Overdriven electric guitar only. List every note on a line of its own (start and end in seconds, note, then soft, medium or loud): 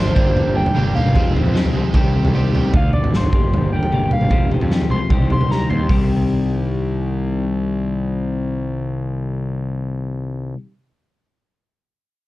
0.00 0.15 D3 medium
0.00 0.15 A3 medium
0.00 0.14 D4 medium
0.00 0.14 F4 medium
0.15 0.95 G2 medium
0.15 0.95 D3 medium
0.15 0.74 G3 medium
0.15 0.75 A#3 medium
0.15 0.76 D4 medium
0.15 0.76 G4 medium
0.75 0.95 G3 medium
0.75 0.95 A#3 medium
0.75 0.94 D4 medium
0.75 0.93 G4 medium
0.95 1.14 G3 medium
0.95 1.14 A#3 medium
0.95 1.14 D4 medium
0.95 1.13 G4 medium
1.16 1.52 F2 medium
1.16 1.52 C3 medium
1.16 1.34 F3 loud
1.16 1.34 G#3 medium
1.16 1.33 C4 loud
1.34 1.53 F3 medium
1.34 1.53 G#3 medium
1.34 1.54 C4 medium
1.53 1.92 F2 medium
1.53 1.91 C3 medium
1.53 1.75 F3 medium
1.53 1.74 G#3 medium
1.53 1.73 C4 medium
1.73 1.92 F3 medium
1.73 1.93 G#3 medium
1.73 1.93 C4 medium
1.73 1.92 G#4 medium
1.92 2.52 C3 medium
1.92 2.32 D#3 medium
1.92 2.32 G3 medium
1.92 2.33 C4 medium
1.92 2.34 G4 medium
2.33 2.71 D#3 medium
2.33 2.54 G3 medium
2.33 2.53 C4 medium
2.33 2.52 G4 medium
2.53 2.73 G3 medium
2.53 2.72 C4 medium
2.53 2.72 G4 medium